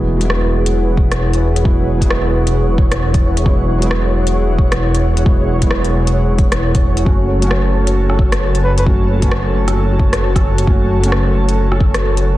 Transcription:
0.00 7.05 E1 medium
0.00 0.15 F#3 medium
0.00 0.17 G#3 medium
0.00 0.18 B3 medium
0.00 0.18 E4 medium
0.00 7.02 E4 medium
0.00 7.02 G#4 medium
0.00 3.42 B4 medium
0.00 12.37 C#5 medium
0.00 7.02 F#5 medium
0.17 1.61 F#3 medium
0.17 1.63 G#3 medium
0.17 closed hi-hat medium
0.22 1.64 B3 medium
0.22 1.65 E4 loud
0.30 cross-stick loud
0.66 closed hi-hat medium
0.97 kick medium
1.12 cross-stick loud
1.12 closed hi-hat medium
1.33 closed hi-hat soft
1.56 closed hi-hat medium
1.63 1.97 F#3 medium
1.63 1.98 G#3 medium
1.63 1.99 B3 medium
1.63 1.99 E4 medium
1.63 kick loud
1.98 3.42 F#3 medium
1.98 3.43 G#3 medium
1.98 kick medium
1.98 closed hi-hat medium
2.03 3.45 B3 medium
2.03 3.46 E4 loud
2.10 cross-stick loud
2.47 closed hi-hat medium
2.78 kick loud
2.92 cross-stick loud
2.92 closed hi-hat medium
3.14 kick loud
3.14 closed hi-hat soft
3.37 closed hi-hat medium
3.44 3.77 F#3 medium
3.44 3.78 G#3 medium
3.44 3.79 B3 medium
3.44 3.80 E4 medium
3.44 7.03 C#5 medium
3.44 kick loud
3.78 5.22 F#3 medium
3.78 5.24 G#3 medium
3.78 closed hi-hat medium
3.83 5.25 B3 medium
3.83 5.26 E4 loud
3.91 cross-stick loud
4.27 closed hi-hat medium
4.58 kick loud
4.72 cross-stick loud
4.72 closed hi-hat medium
4.95 closed hi-hat soft
5.17 closed hi-hat medium
5.24 5.57 F#3 medium
5.24 5.59 G#3 medium
5.24 5.59 B3 medium
5.24 kick loud
5.28 5.60 E4 medium
5.59 7.02 F#3 medium
5.59 7.04 G#3 medium
5.59 kick medium
5.59 closed hi-hat medium
5.64 7.05 B3 medium
5.64 7.07 E4 loud
5.71 cross-stick loud
5.84 closed hi-hat soft
6.07 closed hi-hat medium
6.38 kick loud
6.38 closed hi-hat soft
6.52 cross-stick loud
6.52 closed hi-hat medium
6.75 kick loud
6.75 closed hi-hat soft
6.97 closed hi-hat medium
7.04 12.37 F#1 medium
7.04 7.37 F#3 medium
7.04 7.39 A3 medium
7.04 7.40 C#4 medium
7.04 12.37 F#4 medium
7.04 12.37 A4 medium
7.04 12.37 C#5 medium
7.04 12.37 A5 medium
7.04 kick loud
7.08 7.40 F#4 medium
7.39 8.83 F#3 medium
7.39 8.84 A3 medium
7.39 closed hi-hat soft
7.44 8.86 C#4 medium
7.44 8.87 F#4 loud
7.51 cross-stick loud
7.87 closed hi-hat medium
8.10 cross-stick soft
8.19 kick medium
8.32 cross-stick loud
8.32 closed hi-hat medium
8.55 closed hi-hat soft
8.64 8.73 B4 medium
8.78 8.84 B4 medium
8.78 closed hi-hat soft
8.85 9.17 F#3 medium
8.85 9.20 A3 medium
8.85 9.20 C#4 medium
8.85 9.21 F#4 medium
8.85 kick loud
9.19 10.63 F#3 medium
9.19 10.65 A3 medium
9.19 closed hi-hat soft
9.23 10.66 C#4 medium
9.23 kick medium
9.27 10.67 F#4 loud
9.31 cross-stick loud
9.68 cross-stick medium
9.68 closed hi-hat soft
9.99 kick medium
10.13 cross-stick loud
10.13 closed hi-hat medium
10.36 kick medium
10.36 cross-stick medium
10.36 closed hi-hat soft
10.58 closed hi-hat medium
10.66 10.98 F#3 medium
10.66 11.01 A3 medium
10.66 11.01 C#4 medium
10.66 kick loud
10.70 11.02 F#4 medium
11.00 12.37 F#3 loud
11.00 12.37 A3 medium
11.00 closed hi-hat medium
11.05 12.37 C#4 medium
11.05 12.37 F#4 loud
11.12 cross-stick loud
11.49 closed hi-hat medium
11.72 cross-stick medium
11.80 kick medium
11.94 cross-stick loud
11.94 closed hi-hat medium
12.17 closed hi-hat soft

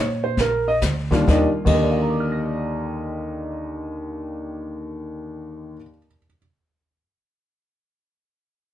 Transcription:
0.00 0.36 A#2 medium
0.00 0.23 C#5 medium
0.24 0.38 C5 medium
0.37 0.81 A#1 medium
0.37 0.67 A#4 medium
0.37 brush sweep medium
0.37 kick soft
0.37 snare soft
0.68 0.77 D#5 medium
0.81 1.27 D2 medium
0.81 kick soft
0.81 snare medium
0.81 hi-hat pedal medium
1.11 1.26 D#2 medium
1.11 1.72 G3 soft
1.11 1.71 A#3 soft
1.11 1.28 D4 soft
1.11 1.72 F4 medium
1.11 kick soft
1.11 snare soft
1.27 1.45 D#2 medium
1.27 1.46 D#2 medium
1.27 1.46 D#3 medium
1.27 1.47 D4 medium
1.27 1.48 G4 medium
1.27 1.45 D#5 medium
1.27 kick soft
1.27 snare medium
1.65 5.75 D#2 medium
1.65 5.72 D#2 medium
1.65 5.77 D3 medium
1.65 5.76 D#3 medium
1.65 5.78 G4 medium
1.65 5.73 D#5 medium
1.65 kick soft
1.65 crash medium
1.75 5.81 A#4 soft
1.83 5.89 D5 soft
1.91 5.97 F5 soft
2.00 6.06 A#5 soft
2.10 6.16 D6 soft
2.20 6.26 F6 soft
2.32 6.38 A#6 soft

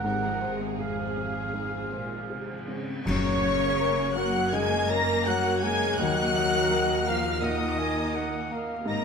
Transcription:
0.00 2.86 G#1 medium
0.00 0.72 G#2 medium
0.00 3.09 G#2 medium
0.00 2.69 C3 medium
0.00 0.40 C4 medium
0.00 0.60 G#4 medium
0.00 2.69 C5 medium
0.00 0.52 F#5 medium
0.00 0.78 F#5 medium
0.00 1.16 G#5 medium
0.04 1.51 G#2 medium
0.04 0.22 C3 medium
0.04 2.82 G#4 medium
0.04 0.79 A#4 medium
0.23 0.42 F3 medium
0.23 2.67 G#3 soft
0.41 0.61 G#3 medium
0.41 2.48 C4 medium
0.41 1.02 C5 medium
0.61 0.80 C4 medium
0.61 0.98 G#4 soft
0.79 1.89 F2 medium
0.79 0.99 G#3 medium
0.79 1.40 G#4 soft
0.79 2.69 G#4 medium
0.79 2.65 G#4 medium
0.79 2.10 C5 medium
0.79 2.68 F5 medium
0.79 2.64 F5 medium
0.99 1.18 F3 medium
0.99 2.29 G#4 medium
1.16 1.37 C3 medium
1.16 1.77 C4 soft
1.16 1.54 G#5 medium
1.37 1.56 F3 medium
1.37 1.73 C6 medium
1.54 3.01 G#2 soft
1.54 1.73 G#3 medium
1.54 1.92 G#5 medium
1.74 1.94 C4 medium
1.74 3.09 C6 medium
1.92 2.31 A#2 medium
1.92 2.12 G#3 medium
1.92 2.53 C5 medium
1.92 3.09 G#5 medium
2.11 2.31 F3 medium
2.11 3.09 C5 medium
2.30 2.69 C3 medium
2.30 2.50 C3 medium
2.30 2.91 G#4 medium
2.30 3.09 G#4 medium
2.49 2.69 F3 medium
2.49 2.86 C4 soft
2.67 3.05 C#3 medium
2.67 3.09 G#3 soft
2.67 2.88 G#3 medium
2.67 3.06 C4 soft
2.87 3.09 C4 soft
2.87 3.07 C4 medium
3.05 5.94 F#2 medium
3.05 4.13 F#2 loud
3.05 6.01 F#2 medium
3.05 4.49 F#2 medium
3.05 4.13 C#3 loud
3.05 8.84 A#3 medium
3.05 4.13 C#4 loud
3.05 8.84 A#4 medium
3.05 4.13 C#5 loud
3.05 4.18 C#5 loud
3.05 4.13 C#5 loud
3.05 4.13 C#6 loud
3.05 concert bass drum medium
3.05 crash medium
3.25 4.71 A#3 medium
3.42 4.02 C#5 medium
3.61 5.08 A#4 medium
3.80 4.39 A#4 medium
3.80 4.16 A#5 medium
3.99 5.44 C#6 medium
4.16 4.53 F#3 medium
4.16 4.75 A#3 medium
4.16 4.53 F#4 medium
4.16 4.56 F#5 medium
4.16 4.53 F#5 medium
4.16 4.54 F#5 loud
4.16 5.25 A#5 medium
4.16 4.54 F#6 loud
4.35 4.89 C#5 medium
4.53 5.11 C#3 medium
4.53 6.02 C#3 medium
4.53 4.89 G#3 medium
4.53 4.90 G#4 loud
4.53 5.28 D#5 loud
4.53 4.90 G#5 loud
4.53 4.90 G#5 medium
4.53 4.91 G#5 loud
4.53 4.90 G#6 loud
4.72 6.17 A#3 medium
4.89 5.26 A#3 medium
4.89 5.26 A#4 loud
4.89 5.47 C#5 medium
4.89 5.81 C#5 medium
4.89 5.27 A#5 medium
4.89 5.26 A#5 medium
4.89 5.26 A#5 loud
4.89 5.26 A#6 loud
5.26 5.62 F#3 medium
5.26 5.62 F#4 medium
5.26 5.84 A#4 medium
5.26 5.99 C#5 medium
5.26 5.65 F#5 loud
5.26 5.62 F#5 loud
5.26 5.62 F#5 medium
5.26 5.62 A#5 medium
5.26 5.62 F#6 loud
5.45 6.02 C#6 medium
5.63 5.98 G#3 medium
5.63 5.99 A#3 medium
5.63 5.99 G#4 medium
5.63 5.97 G#5 medium
5.63 5.98 G#5 medium
5.63 5.99 G#5 loud
5.63 6.70 A#5 medium
5.63 5.98 G#6 loud
5.82 6.02 C#5 medium
5.98 8.87 D#2 medium
5.98 7.39 D#2 medium
5.98 8.91 D#3 medium
5.98 7.07 F#3 loud
5.98 7.04 F#4 loud
5.98 6.70 D#5 medium
5.98 7.08 F#5 medium
5.98 7.07 F#5 loud
5.98 7.05 F#5 loud
5.98 7.07 F#6 loud
6.18 7.60 A#3 medium
6.36 7.24 D#5 medium
6.36 6.93 D#5 medium
6.54 7.96 A#4 medium
6.71 7.28 A#4 medium
6.71 7.11 D#5 medium
6.71 7.06 A#5 medium
6.90 8.33 D#6 medium
7.07 7.43 F3 medium
7.07 7.64 A#3 medium
7.07 7.43 F4 medium
7.07 7.44 F5 medium
7.07 7.43 F5 medium
7.07 7.44 F5 medium
7.07 8.14 A#5 medium
7.07 7.43 F6 loud
7.25 7.78 D#5 medium
7.42 8.00 A#2 medium
7.42 8.51 D#3 medium
7.42 9.04 D#4 medium
7.42 8.52 D#4 medium
7.42 8.51 D#5 medium
7.42 8.52 D#5 medium
7.42 7.80 F#5 medium
7.42 8.51 D#6 loud
7.61 9.04 A#3 medium
7.79 8.37 D#5 medium
7.79 8.17 G#5 medium
7.97 9.04 A#4 medium
8.14 8.72 A#4 medium
8.14 8.54 F#5 medium
8.14 8.50 A#5 medium
8.34 9.04 D#6 medium
8.50 8.87 A#3 medium
8.50 8.89 F5 medium
8.50 9.04 A#5 medium
8.70 9.04 D#5 medium
8.86 9.04 G#1 medium
8.86 9.04 G#2 medium
8.86 9.04 C3 medium
8.86 9.04 A#3 medium
8.86 9.04 A#4 loud
8.86 9.04 A#4 medium
8.86 9.04 D#5 medium
8.86 9.04 A#5 loud
8.86 9.04 A#6 loud

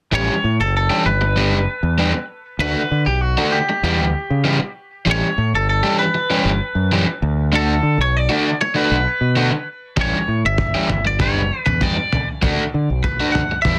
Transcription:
0.12 0.27 A1 medium
0.12 0.33 E3 medium
0.12 0.33 G3 medium
0.12 0.33 C#4 medium
0.12 0.33 G4 medium
0.12 0.60 C#5 medium
0.44 0.59 A2 medium
0.60 0.89 F#1 medium
0.60 0.75 A4 medium
0.77 1.05 A4 medium
0.90 1.06 E3 medium
0.90 1.06 G3 medium
0.90 1.06 C#4 medium
0.90 1.05 G4 medium
1.06 1.51 G1 medium
1.06 2.25 B4 medium
1.21 muted overdriven electric guitar stroke soft
1.36 1.56 G3 medium
1.36 1.57 B3 medium
1.36 1.57 D4 medium
1.36 1.57 G4 medium
1.51 1.66 F#1 medium
1.83 2.12 E2 medium
1.98 2.13 G3 medium
1.98 2.13 B3 medium
1.98 2.13 D4 medium
1.98 2.13 G4 medium
2.14 muted overdriven electric guitar stroke soft
2.59 2.74 D2 medium
2.59 2.80 D3 medium
2.59 2.80 A3 medium
2.59 2.80 D4 medium
2.59 2.81 F#4 medium
2.59 3.03 B4 medium
2.91 3.05 D3 medium
3.06 3.35 B1 medium
3.06 3.21 G4 medium
3.21 3.52 F#4 medium
3.37 3.57 D3 medium
3.37 3.57 A3 medium
3.37 3.57 D4 medium
3.37 3.57 F#4 medium
3.52 4.71 G4 medium
3.69 muted overdriven electric guitar stroke soft
3.83 4.00 E2 medium
3.83 4.03 E3 medium
3.83 4.03 G3 medium
3.83 4.03 B3 medium
3.83 4.04 G4 medium
4.00 4.14 D2 medium
4.30 4.59 C#3 medium
4.44 4.59 E3 medium
4.44 4.59 G3 medium
4.44 4.58 B3 medium
4.44 4.59 G4 medium
4.60 muted overdriven electric guitar stroke soft
5.05 5.21 A1 medium
5.05 5.26 E3 medium
5.05 5.26 G3 medium
5.05 5.26 C#4 medium
5.05 5.26 G4 medium
5.11 5.55 C#5 loud
5.38 5.52 A2 medium
5.53 5.82 G1 medium
5.53 5.68 A4 medium
5.69 5.98 A4 medium
5.83 6.04 E3 medium
5.83 6.03 G3 medium
5.83 6.04 C#4 medium
5.83 6.03 G4 medium
5.99 7.18 B4 medium
6.14 muted overdriven electric guitar stroke soft
6.30 6.50 E3 medium
6.30 6.50 G3 medium
6.30 6.50 C#4 medium
6.30 6.50 G4 medium
6.45 6.59 G1 medium
6.75 7.04 F#2 medium
6.92 7.07 E3 medium
6.92 7.06 G3 medium
6.92 7.06 C#4 medium
6.92 7.05 G4 medium
7.06 muted overdriven electric guitar stroke soft
7.22 7.80 D2 medium
7.52 7.72 D3 medium
7.52 7.72 A3 medium
7.52 7.73 D4 medium
7.52 7.73 F#4 medium
7.52 8.01 A4 medium
7.83 7.97 D3 medium
7.98 8.27 B1 medium
7.98 8.17 C#5 medium
8.17 8.61 D5 medium
8.29 8.50 D3 medium
8.29 8.50 A3 medium
8.29 8.49 D4 medium
8.29 8.49 F#4 medium
8.61 8.76 C#5 medium
8.61 muted overdriven electric guitar stroke soft
8.74 8.95 D3 medium
8.74 8.95 A3 medium
8.74 8.95 D4 medium
8.74 8.95 F#4 medium
8.74 9.67 B4 medium
8.91 9.05 B1 medium
9.21 9.50 B2 medium
9.36 9.51 D3 medium
9.36 9.51 A3 medium
9.36 9.51 D4 medium
9.36 9.51 F#4 medium
9.52 muted overdriven electric guitar stroke soft
9.97 10.12 A1 medium
9.97 10.17 E3 medium
9.97 10.17 G3 medium
9.97 10.17 C#4 medium
9.97 10.18 G4 medium
9.97 kick loud
9.97 floor tom medium
10.01 10.45 C#5 medium
10.28 10.43 A2 medium
10.45 10.73 G1 medium
10.45 11.06 E5 medium
10.58 kick loud
10.58 floor tom medium
10.58 mid tom medium
10.74 10.90 E3 medium
10.74 10.90 G3 medium
10.74 10.90 C#4 medium
10.74 10.90 G4 medium
10.89 11.35 G1 medium
10.89 floor tom medium
10.89 mid tom medium
11.05 11.20 D5 medium
11.05 muted overdriven electric guitar stroke soft
11.19 11.40 G3 medium
11.19 11.40 B3 medium
11.19 11.40 D4 medium
11.19 11.41 G4 medium
11.19 11.65 C#5 medium
11.19 kick loud
11.19 floor tom medium
11.35 11.50 F#1 medium
11.66 11.95 E2 medium
11.66 11.82 B4 medium
11.66 floor tom medium
11.81 11.96 G3 medium
11.81 11.96 B3 medium
11.81 11.96 D4 medium
11.81 11.95 G4 medium
11.81 12.28 D5 medium
11.81 kick loud
11.81 mid tom medium
11.96 muted overdriven electric guitar stroke soft
12.13 floor tom medium
12.42 12.57 D2 medium
12.42 12.62 D3 medium
12.42 12.62 A3 medium
12.42 12.63 D4 medium
12.42 12.63 F#4 medium
12.42 kick loud
12.42 floor tom medium
12.74 12.88 D3 medium
12.90 13.18 B1 medium
13.04 13.32 B4 medium
13.04 kick loud
13.04 floor tom medium
13.04 mid tom medium
13.20 13.40 D3 medium
13.20 13.40 A3 medium
13.20 13.40 D4 medium
13.20 13.39 F#4 medium
13.32 13.61 F#5 medium
13.32 floor tom medium
13.32 mid tom medium
13.51 muted overdriven electric guitar stroke soft
13.62 13.79 E2 medium
13.62 13.79 E3 medium
13.62 13.79 G3 medium
13.62 13.79 E5 medium
13.62 kick loud
13.62 floor tom medium
13.66 13.79 B3 medium
13.66 13.79 E4 loud

